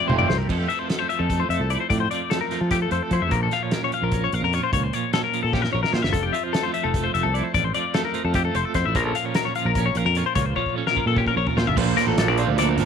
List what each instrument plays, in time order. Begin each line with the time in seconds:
Already playing: clean electric guitar F2 F3 A3 E4 G4
0.08 fingered electric bass F1, overdriven electric guitar C3 F3 A3 C4, clean electric guitar C3 C5, mid tom
0.19 clean electric guitar D5, mid tom
0.29 fingered electric bass C2, clean electric guitar C5, muted overdriven electric guitar stroke, snare
0.38 clean electric guitar A#4
0.48 fingered electric bass F2, clean electric guitar F2 F3 A3 E4 A4, kick, crash
0.52 clean electric guitar A4
0.58 clean electric guitar G4
0.69 clean electric guitar F3 E5, closed hi-hat
0.79 clean electric guitar C5
0.88 clean electric guitar A3 A4, snare, closed hi-hat
0.99 clean electric guitar C5
1.09 clean electric guitar F3 E5, closed hi-hat
1.19 fingered electric bass F2, clean electric guitar A4
1.30 clean electric guitar A3, kick, closed hi-hat
1.40 clean electric guitar C5
1.49 fingered electric bass F2, clean electric guitar A4 E5, closed hi-hat
1.60 fingered electric bass C2, clean electric guitar A4
1.70 clean electric guitar E4 D5, closed hi-hat
1.80 clean electric guitar C5
1.90 clean electric guitar F2 D5, fingered electric bass A2, kick, closed hi-hat
2.00 clean electric guitar C5
2.11 clean electric guitar F3 D5, closed hi-hat
2.30 clean electric guitar A3 A4, snare, closed hi-hat
2.41 clean electric guitar A#4
2.51 clean electric guitar F3, snare, closed hi-hat
2.61 fingered electric bass F3, clean electric guitar A4
2.71 clean electric guitar A3 G4, kick, closed hi-hat
2.82 clean electric guitar A4
2.91 fingered electric bass F2, clean electric guitar A4 C5, closed hi-hat
3.03 clean electric guitar A4
3.11 fingered electric bass F3, clean electric guitar E4 C5, kick, closed hi-hat
3.22 fingered electric bass F2, clean electric guitar E5
3.31 fingered electric bass A#1, clean electric guitar A#2 A#4, kick, closed hi-hat
3.43 clean electric guitar A4
3.51 clean electric guitar F3 F5, snare, closed hi-hat
3.63 clean electric guitar C#5
3.71 clean electric guitar C#4 A#4, snare, closed hi-hat
3.84 clean electric guitar C#5
3.92 clean electric guitar F3 F5, closed hi-hat
4.02 fingered electric bass A#1, clean electric guitar A#4
4.12 clean electric guitar C#4, kick, closed hi-hat
4.24 clean electric guitar C#5
4.32 fingered electric bass A#1, clean electric guitar A#4 F5, closed hi-hat
4.42 fingered electric bass F2, clean electric guitar A#4
4.53 clean electric guitar F4 C#5, closed hi-hat
4.64 clean electric guitar C5
4.73 fingered electric bass C#2, clean electric guitar A#2 C#5, kick, closed hi-hat
4.84 clean electric guitar C5
4.93 clean electric guitar F3 C#5, closed hi-hat
5.13 clean electric guitar C#4 A4, snare, closed hi-hat
5.24 clean electric guitar A#4
5.33 clean electric guitar F3, closed hi-hat
5.43 fingered electric bass A#2, clean electric guitar A4
5.53 clean electric guitar C#4 G4, kick, snare
5.62 clean electric guitar A#4, snare
5.73 fingered electric bass A#1, clean electric guitar A#4 C#5
5.83 clean electric guitar A#4, snare
5.93 fingered electric bass A#2, clean electric guitar F4 C5, snare
6.02 fingered electric bass G1, clean electric guitar E5, snare
6.13 fingered electric bass F1, clean electric guitar F2 A4, kick, closed hi-hat
6.23 clean electric guitar G4
6.33 clean electric guitar F3 E5, closed hi-hat
6.44 clean electric guitar C5
6.53 clean electric guitar A3 A4, snare, closed hi-hat
6.63 clean electric guitar C5
6.74 clean electric guitar F3 E5, closed hi-hat
6.84 fingered electric bass F1, clean electric guitar A4
6.94 clean electric guitar A3, kick, closed hi-hat
7.04 clean electric guitar C5
7.14 fingered electric bass F1, clean electric guitar A4 E5, closed hi-hat
7.23 fingered electric bass C2, clean electric guitar A4
7.34 clean electric guitar E4 D5, closed hi-hat
7.44 clean electric guitar C5
7.54 fingered electric bass A1, clean electric guitar F2 D5, kick, closed hi-hat
7.64 clean electric guitar C5
7.74 clean electric guitar F3 D5, closed hi-hat
7.94 clean electric guitar A3 A4, snare, closed hi-hat
8.05 clean electric guitar A#4
8.14 clean electric guitar F3, closed hi-hat
8.24 fingered electric bass F2, clean electric guitar A4
8.34 clean electric guitar A3 G4, kick, closed hi-hat
8.45 clean electric guitar A4
8.55 fingered electric bass F1, clean electric guitar A4 C5, closed hi-hat
8.65 clean electric guitar A4
8.74 fingered electric bass F2, clean electric guitar E4 C5, kick, snare, closed hi-hat
8.85 fingered electric bass A1, clean electric guitar E5
8.95 fingered electric bass A#1, clean electric guitar A#2 F3 C#4 F4 A#4, kick, closed hi-hat
9.06 clean electric guitar A4
9.15 clean electric guitar F3 F5, closed hi-hat
9.26 clean electric guitar C#5
9.35 clean electric guitar C#4 A#4, snare, closed hi-hat
9.45 clean electric guitar C#5
9.55 clean electric guitar F3 F5, closed hi-hat
9.65 fingered electric bass A#1, clean electric guitar A#4
9.75 clean electric guitar C#4, kick, closed hi-hat
9.86 clean electric guitar C#5
9.95 fingered electric bass A#1, clean electric guitar A#4 F5, closed hi-hat
10.05 fingered electric bass F2, clean electric guitar A#4
10.15 clean electric guitar F4 C#5, closed hi-hat
10.26 clean electric guitar C5
10.35 fingered electric bass C#2, clean electric guitar A#2 C#5, kick, closed hi-hat
10.46 clean electric guitar C5
10.56 clean electric guitar F3 C#5, kick
10.66 kick
10.76 clean electric guitar C#4 A4
10.87 clean electric guitar A#4, snare
10.96 clean electric guitar F3, kick
11.06 fingered electric bass A#2, clean electric guitar A4
11.17 clean electric guitar C#4 G4, kick
11.26 clean electric guitar A#4, kick
11.37 fingered electric bass A#1, clean electric guitar A#4 C#5
11.47 clean electric guitar A#4, floor tom
11.57 fingered electric bass A#2, clean electric guitar F4 C5, snare
11.67 fingered electric bass G1, clean electric guitar E5, floor tom
11.76 fingered electric bass A#1, overdriven electric guitar A#2 F3 A#3 D4, clean electric guitar A#2 C5, kick, crash
11.96 overdriven electric guitar F3 A#3 D4, clean electric guitar C4 A#4, snare, closed hi-hat
12.07 fingered electric bass A1, clean electric guitar A4
12.16 overdriven electric guitar A#2 F3 A#3 D4, clean electric guitar A4, snare, closed hi-hat
12.28 fingered electric bass A#1, clean electric guitar D5
12.36 clean electric guitar F3 C4 C5, overdriven electric guitar F3 A#3 D4, closed hi-hat
12.47 fingered electric bass D2, clean electric guitar A4
12.56 overdriven electric guitar A#2 F3 A#3 D4, clean electric guitar A4 D5, snare, closed hi-hat
12.69 clean electric guitar A#4
12.76 fingered electric bass A1, overdriven electric guitar F3 A#3 D4, clean electric guitar F3, snare, closed hi-hat